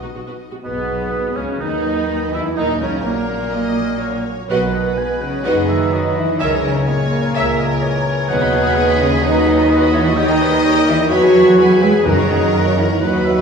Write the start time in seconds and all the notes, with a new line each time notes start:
Already playing: B2 F#3 B3 D#4 F#4 D#5
0.03 B2 D#4 F#4
0.14 B1 B2 F#4
0.26 B2 F#4 B4
0.51 B2 F#4
0.63 B1 G#2 B2 B3 B4
0.88 F#3
1.36 C#2 C#3 C#4 F#4 C#5
1.59 D#2 D#3 D#4 B4 D#5
1.84 F#3
2.09 D#4
2.32 E2 E3 E4 F#4 E5
2.56 D#2 A#2 D#3 D#4 A#4 D#5
2.80 C#2 C#3 F#3 C#4 C#5
3.05 A#1 A#2 A#3 F#4 A#4
3.54 A#2 D#5
3.78 F#3
4.02 F#4 C#5
4.26 C#4
4.49 B1 B2 D#3 B3 F#4 B4 D#5 F#5
4.73 F#3 D#5
4.97 G#3 F#4 G#5
5.21 C#3 C#4 D#4 C#5 F#5
5.45 F#1 D#3 B3 D#4 F#4 G#4 B4 D#5 F#5
5.68 F#3 E5
5.92 F#3 F#4 D#5
6.15 E3 D#4 E4 E5
6.40 C#2 C#3 D#3 D#4 A#4 C#5 D#5 E5 G#5
6.63 C#3 C#4 C#5
6.87 A#2 D#3 A#3 A#4 C#5
7.10 C#3 C#5
7.35 C#2 C#3 A#4 E5
7.59 C#4 D#5
7.81 E3 A#4 C#5
8.07 C#5
8.28 D#2 B2 D#3 F#3 B3 D#4 G#4 B4 F#5
8.41 F#4 D#5 B5
8.52 B3 D#4 B4 F#5
8.64 F#4 D#5 B5
8.75 G#3 D#4 B4 D#5 F#5
8.88 F#4 D#5 B5
8.99 C#3 C#4 D#4 B4 C#5 F#5
9.10 F#4 D#5 B5
9.22 D#3 F#3 D#4 B4 D#5 F#5
9.34 F#4 D#5 B5
9.45 F#3 D#4 B4 F#5
9.58 F#4 D#5 B5
9.69 G#3 D#4 F#4 B4 D#5 F#5
9.82 F#4 D#5 B5
9.93 E3 D#4 E4 B4 C#5 E5 F#5
10.05 F#4 D#5 B5
10.16 D#3 G3 D#4 G4 C#5 D#5 G5
10.28 A#4 D#5 A#5
10.40 A#3 G4 B4 C#5 G5
10.51 A#4 D#5 A#5
10.63 G4 A#4 C#5 G5
10.75 A#4 D#5 A#5
10.87 E3 E4 G4 A#4 C#5 E5 G5
10.99 A#4 D#5 A#5
11.10 E2 E3 F#3 E4 F#4 B4 C#5 F#5 G#5 B5
11.23 G#4 E5 G#5
11.34 G#3 E4 B4 G#5 B5
11.46 G#4 E5 G#5
11.57 E3 E4 B4 C#5 G#5 B5
11.70 G#4 E5 G#5
11.81 G#3 E4 G#4 B4 G#5 B5
11.93 G#4 E5 G#5
12.05 F#2 D#3 F#3 C#4 D#4 A#4 D#5 F#5
12.17 F#4 C#5 A#5
12.28 C#4 G#4 A#4 F#5
12.41 F#4 C#5 A#5
12.53 A#3 C#4 A#4 F#5
12.64 F#4 C#5 A#5
12.77 E3 G#3 C#4 E4 A#4 C#5 E5 F#5
12.88 F#4 C#5 A#5
13.00 D#2 D#3 F#3 D#4 F#4 B4 F#5
13.12 F#4 D#5 B5
13.24 D#4 B4 E5 F#5
13.36 F#4 D#5 B5